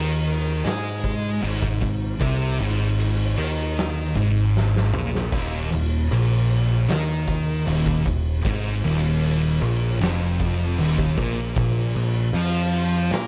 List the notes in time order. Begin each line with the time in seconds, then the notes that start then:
Already playing: D#2 D#3
0.26 crash
0.64 G#2 G#3, snare, crash
1.04 kick, crash
1.42 G#1 G#2, crash
1.62 kick
1.82 G#1 G#2, kick, crash
2.19 C2 C3, kick, crash
2.59 G#1 G#2, crash
2.99 crash
3.38 D#2 D#3, crash
3.77 snare, crash
4.14 G#1 G#2, kick, crash
4.57 snare
4.76 snare
4.92 A#1 A#2, mid tom
5.15 snare
5.32 D#1 D#2, kick, crash
5.72 D#1 D#2, crash
6.11 A#1 A#2, crash
6.50 crash
6.88 D#2 D#3, snare, crash
7.28 kick, crash
7.66 D#1 D#2, crash
7.86 kick
8.05 D#1 D#2, kick, crash
8.45 G#1 G#2, kick, crash
8.84 D#1 D#2, crash
9.23 crash
9.62 A#1 A#2, crash
10.01 F1 F2, snare, crash
10.40 kick, crash
10.78 D#1 D#2, crash
10.98 kick
11.17 A#1 A#2, kick, crash
11.56 A#1 A#2, kick, crash
11.95 A#1 A#2, crash
12.33 F2 F3, crash
12.73 crash
13.11 A#2 A#3, snare, crash